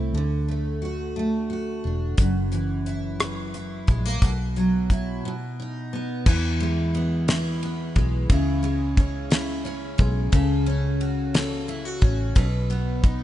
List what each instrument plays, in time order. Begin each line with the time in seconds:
Already playing: fingered electric bass C2, steel-string acoustic guitar A2 A3 C4 E4
0.13 fingered electric bass D2, steel-string acoustic guitar D3
0.48 steel-string acoustic guitar A3
0.82 steel-string acoustic guitar F#4
1.16 steel-string acoustic guitar A3
1.50 steel-string acoustic guitar F#4
1.84 fingered electric bass E1, steel-string acoustic guitar D4
2.18 fingered electric bass F#1, steel-string acoustic guitar F#2, kick, closed hi-hat
2.52 steel-string acoustic guitar E3, closed hi-hat
2.86 steel-string acoustic guitar E4, closed hi-hat
3.20 steel-string acoustic guitar E3, cross-stick, closed hi-hat
3.54 steel-string acoustic guitar E4, closed hi-hat
3.87 fingered electric bass A#1, steel-string acoustic guitar G#3, kick, closed hi-hat
4.05 steel-string acoustic guitar A#3
4.22 fingered electric bass B1, steel-string acoustic guitar B2, kick, closed hi-hat
4.56 steel-string acoustic guitar F#3, closed hi-hat
4.90 steel-string acoustic guitar E4, kick, closed hi-hat
5.25 steel-string acoustic guitar B2
5.60 steel-string acoustic guitar D#4
5.93 steel-string acoustic guitar B3
6.26 fingered electric bass E2, steel-string acoustic guitar E3 E4, kick, crash
6.60 steel-string acoustic guitar G#3, ride
6.95 steel-string acoustic guitar B3, ride
7.28 steel-string acoustic guitar E4, snare, ride
7.63 steel-string acoustic guitar B3, ride
7.96 fingered electric bass B1, steel-string acoustic guitar G#3, kick, ride
8.30 fingered electric bass C#2, steel-string acoustic guitar C#3 E4, kick, ride
8.63 steel-string acoustic guitar G#3, ride
8.97 steel-string acoustic guitar C#4, kick, ride
9.30 steel-string acoustic guitar E4, snare, ride
9.65 steel-string acoustic guitar C#4, ride
9.98 fingered electric bass B1, steel-string acoustic guitar G#3, kick, ride
10.32 fingered electric bass C#2, steel-string acoustic guitar C#3 A4, kick, ride
10.66 steel-string acoustic guitar C#4, ride
11.01 steel-string acoustic guitar F#4, ride
11.34 steel-string acoustic guitar A4, snare, ride
11.68 steel-string acoustic guitar E4, ride
11.85 steel-string acoustic guitar F#4
12.01 fingered electric bass A1, steel-string acoustic guitar C#4, kick, ride
12.35 fingered electric bass B1, steel-string acoustic guitar B2 B4, kick, ride
12.70 steel-string acoustic guitar B3, ride
13.03 steel-string acoustic guitar D#4, kick, ride